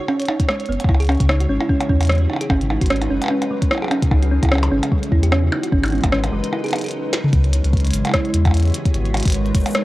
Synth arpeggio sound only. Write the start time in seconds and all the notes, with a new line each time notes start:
0.08 C#4
0.20 C#5
0.29 D#4
0.49 G#3
0.69 B3
0.89 E4
1.00 G#4
1.09 C#4
1.20 C#3
1.29 D#4
1.40 F#4
1.49 C#4
1.61 E4
1.69 C#4
1.90 C#4
2.10 G3
2.30 D#4
2.41 G#4
2.50 C#4
2.61 C#3
2.70 D#4
2.81 F#4
2.90 C#4
3.01 D#4
3.10 C#4
3.30 C#4
3.51 G#3
3.71 E4
3.82 G#4
3.91 C#4
4.02 C#3
4.11 D#4
4.22 F#4
4.31 C#4
4.42 E4
4.51 C#4
4.71 C#4
4.92 G3
5.12 E4
5.23 G4
5.32 C#4
5.43 C#3
5.52 D#4
5.63 F#4
5.72 C#4
5.83 D#4
5.92 C#4
6.12 C#4
6.33 G#3
6.53 E4
6.64 G#4
6.73 G#4
6.84 G#4